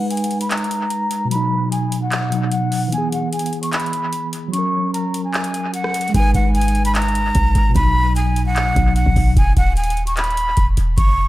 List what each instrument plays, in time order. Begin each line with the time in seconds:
Already playing: tine electric piano G#3 D#4 B4
0.11 flute G#5, closed hi-hat
0.17 closed hi-hat
0.24 closed hi-hat
0.31 closed hi-hat
0.41 flute B5, closed hi-hat
0.51 flute A#5, clap, closed hi-hat
0.57 closed hi-hat
0.64 closed hi-hat
0.71 closed hi-hat
0.90 closed hi-hat
1.11 closed hi-hat
1.25 tine electric piano B2
1.30 tine electric piano F#3, flute B5, closed hi-hat
1.35 tine electric piano D#4
1.72 flute G#5, closed hi-hat
1.92 closed hi-hat
2.02 flute F#5
2.12 clap, closed hi-hat
2.30 tine electric piano B2 F#3, closed hi-hat
2.35 tine electric piano D#4
2.52 flute F#5, closed hi-hat
2.72 open hi-hat
2.88 tine electric piano E3
2.92 tine electric piano B3, flute G#5, closed hi-hat
2.98 tine electric piano G#4
3.12 flute F#5, closed hi-hat
3.33 flute G#5, closed hi-hat
3.39 closed hi-hat
3.46 closed hi-hat
3.53 closed hi-hat
3.63 flute C#6, closed hi-hat
3.73 flute B5, clap, closed hi-hat
3.80 closed hi-hat
3.86 closed hi-hat
3.93 closed hi-hat
4.13 closed hi-hat
4.33 closed hi-hat
4.48 tine electric piano F#3
4.53 tine electric piano C#4, flute C#6, closed hi-hat
4.58 tine electric piano A#4
4.93 flute A#5, closed hi-hat
5.14 closed hi-hat
5.24 flute G#5
5.34 clap, closed hi-hat
5.44 closed hi-hat
5.54 closed hi-hat
5.74 flute F#5, closed hi-hat
5.84 cross-stick
5.94 closed hi-hat
6.01 closed hi-hat
6.08 tine electric piano G#3, closed hi-hat
6.14 808-style bass G#1, tine electric piano D#4, flute G#5, kick, closed hi-hat
6.19 tine electric piano B4
6.35 808-style bass G#1, flute F#5, kick, closed hi-hat
6.55 flute G#5, closed hi-hat
6.61 closed hi-hat
6.68 closed hi-hat
6.75 closed hi-hat
6.85 flute B5, closed hi-hat
6.95 flute A#5, clap, closed hi-hat
7.02 closed hi-hat
7.08 closed hi-hat
7.15 closed hi-hat
7.35 808-style bass B1, kick, closed hi-hat
7.55 808-style bass G#1, closed hi-hat
7.69 tine electric piano B2
7.74 808-style bass B1, tine electric piano F#3, flute B5, kick, closed hi-hat
7.80 tine electric piano D#4
8.16 flute G#5, closed hi-hat
8.36 closed hi-hat
8.46 flute F#5
8.56 clap, closed hi-hat
8.74 808-style bass B1, tine electric piano B2 F#3, kick, closed hi-hat
8.79 tine electric piano D#4
8.96 flute F#5, closed hi-hat
9.06 808-style bass B1, kick
9.16 808-style bass B1, kick, open hi-hat
9.37 808-style bass E1, flute G#5, kick, closed hi-hat
9.57 808-style bass D#1, flute F#5, kick, closed hi-hat
9.77 flute G#5, closed hi-hat
9.84 closed hi-hat
9.90 closed hi-hat
9.97 closed hi-hat
10.07 flute C#6, closed hi-hat
10.17 flute B5, clap, closed hi-hat
10.24 closed hi-hat
10.31 closed hi-hat
10.37 closed hi-hat
10.57 808-style bass E1, kick, closed hi-hat
10.77 808-style bass E1, closed hi-hat
10.97 808-style bass F#1, flute C#6, kick, closed hi-hat